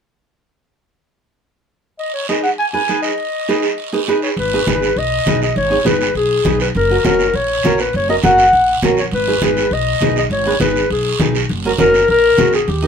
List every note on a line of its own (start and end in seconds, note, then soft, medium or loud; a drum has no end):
1.99 2.13 D#5 medium
1.99 long guiro medium
2.14 2.28 C#5 medium
2.29 2.44 D#4 medium
2.29 2.45 G#4 medium
2.29 2.45 B4 medium
2.29 2.43 D#5 medium
2.29 short guiro medium
2.43 2.50 F#5 medium
2.43 short guiro medium
2.58 2.65 G#5 medium
2.58 long guiro medium
2.73 2.79 D#4 medium
2.73 2.79 G#4 medium
2.73 2.79 B4 medium
2.73 3.01 G#5 medium
2.88 3.10 D#4 medium
2.88 3.10 G#4 medium
2.88 3.10 B4 medium
2.88 short guiro medium
3.02 4.18 D#5 medium
3.02 short guiro medium
3.18 long guiro medium
3.48 3.64 D#4 medium
3.48 3.64 G#4 medium
3.48 3.64 B4 medium
3.48 short guiro medium
3.62 short guiro medium
3.78 long guiro medium
3.93 3.98 D#4 medium
3.93 3.98 G#4 medium
3.93 3.98 B4 medium
4.07 4.29 D#4 medium
4.07 4.29 G#4 medium
4.07 4.29 B4 medium
4.07 short guiro medium
4.22 4.29 C#5 medium
4.22 short guiro medium
4.37 4.61 G#1 medium
4.37 4.65 B4 medium
4.37 long guiro medium
4.53 4.58 D#4 medium
4.53 4.58 G#4 medium
4.53 4.58 B4 medium
4.67 4.91 G#1 medium
4.67 4.88 D#4 medium
4.67 4.88 G#4 medium
4.67 4.88 B4 medium
4.67 4.99 B4 medium
4.67 high conga medium
4.67 short guiro medium
4.82 short guiro medium
4.96 5.20 B1 medium
4.96 5.42 D#5 loud
4.96 long guiro medium
5.26 5.50 B1 medium
5.26 5.42 D#4 medium
5.26 5.42 G#4 medium
5.26 5.43 B4 medium
5.26 high conga medium
5.26 short guiro medium
5.42 5.56 D#5 medium
5.42 short guiro medium
5.56 5.80 G#1 loud
5.56 5.88 C#5 medium
5.56 long guiro medium
5.70 5.76 D#4 medium
5.70 5.76 G#4 medium
5.70 5.76 C#5 medium
5.85 6.09 G#1 medium
5.85 6.06 D#4 medium
5.85 6.06 G#4 medium
5.85 6.06 B4 medium
5.85 6.16 B4 medium
5.85 high conga medium
5.85 short guiro medium
6.01 short guiro medium
6.15 6.39 B1 medium
6.15 6.57 G#4 medium
6.15 long guiro medium
6.45 6.69 B1 medium
6.45 6.61 D#4 medium
6.45 6.61 G#4 medium
6.45 6.61 B4 medium
6.45 high conga medium
6.45 short guiro medium
6.60 6.68 B4 medium
6.60 short guiro medium
6.75 6.99 F#1 loud
6.75 7.03 A#4 medium
6.75 long guiro medium
6.90 6.95 C#4 medium
6.90 6.96 F#4 medium
6.90 6.96 A#4 medium
7.04 7.28 F#1 medium
7.04 7.25 C#4 medium
7.04 7.26 F#4 medium
7.04 7.26 A#4 medium
7.04 7.37 A#4 medium
7.04 high conga medium
7.04 short guiro medium
7.19 short guiro medium
7.34 7.58 A#1 medium
7.34 7.82 C#5 loud
7.34 long guiro medium
7.63 7.88 A#1 medium
7.63 7.80 C#4 medium
7.63 7.80 F#4 medium
7.63 7.80 A#4 medium
7.63 high conga medium
7.63 short guiro medium
7.78 7.95 B4 medium
7.78 short guiro medium
7.93 8.18 F#1 loud
7.93 8.09 C#5 medium
7.93 long guiro medium
8.09 8.14 C#4 medium
8.09 8.14 F#4 medium
8.09 8.14 A#4 medium
8.09 8.16 D#5 medium
8.23 8.47 F#1 medium
8.23 8.44 C#4 medium
8.23 8.44 F#4 medium
8.23 8.45 A#4 medium
8.23 8.79 F#5 loud
8.23 high conga medium
8.23 short guiro medium
8.38 short guiro medium
8.53 8.77 A#1 medium
8.53 long guiro medium
8.82 9.06 A#1 medium
8.82 8.98 C#4 medium
8.82 8.99 F#4 medium
8.82 8.99 A#4 medium
8.82 high conga medium
8.82 short guiro medium
8.97 9.05 C#5 medium
8.97 short guiro medium
9.11 9.36 G#1 medium
9.11 9.41 B4 medium
9.11 long guiro medium
9.27 9.33 D#4 medium
9.27 9.33 G#4 medium
9.27 9.33 B4 medium
9.42 9.65 G#1 medium
9.42 9.63 D#4 medium
9.42 9.63 G#4 medium
9.42 9.64 B4 medium
9.42 9.74 B4 medium
9.42 high conga medium
9.42 short guiro medium
9.57 short guiro medium
9.71 9.95 B1 medium
9.71 10.17 D#5 loud
9.71 long guiro medium
10.01 10.25 B1 medium
10.01 10.17 D#4 medium
10.01 10.17 G#4 medium
10.01 10.17 B4 medium
10.01 high conga medium
10.01 short guiro medium
10.16 10.25 D#5 medium
10.16 short guiro medium
10.30 10.54 G#1 loud
10.30 10.59 C#5 medium
10.30 long guiro medium
10.46 10.51 D#4 medium
10.46 10.51 G#4 medium
10.46 10.52 B4 medium
10.59 10.84 G#1 medium
10.59 10.81 D#4 medium
10.59 10.82 G#4 medium
10.59 10.88 B4 medium
10.59 10.82 B4 medium
10.59 high conga medium
10.59 short guiro medium
10.76 short guiro medium
10.90 11.14 B1 medium
10.90 11.32 G#4 medium
10.90 long guiro medium
11.20 11.43 B1 medium
11.20 11.36 D#4 medium
11.20 11.36 G#4 medium
11.20 11.36 B4 medium
11.20 high conga medium
11.20 short guiro medium
11.35 short guiro medium
11.49 11.73 F#1 loud
11.49 long guiro medium
11.65 11.70 C#4 medium
11.65 11.70 F#4 medium
11.65 11.70 A#4 medium
11.78 12.03 F#1 medium
11.78 12.00 C#4 medium
11.78 12.00 F#4 medium
11.78 12.00 A#4 medium
11.78 12.07 A#4 loud
11.78 high conga medium
11.78 short guiro medium
11.94 short guiro medium
12.08 12.32 A#1 medium
12.08 12.56 A#4 loud
12.08 long guiro medium
12.38 12.62 A#1 medium
12.38 12.54 C#4 medium
12.38 12.54 F#4 medium
12.38 12.54 G#4 medium
12.38 high conga medium
12.38 short guiro medium
12.53 12.71 G#4 medium
12.53 short guiro medium
12.68 12.87 D#2 loud
12.68 12.87 G4 medium
12.68 long guiro medium
12.82 12.87 D#4 medium
12.82 12.87 G4 medium
12.82 12.87 A#4 medium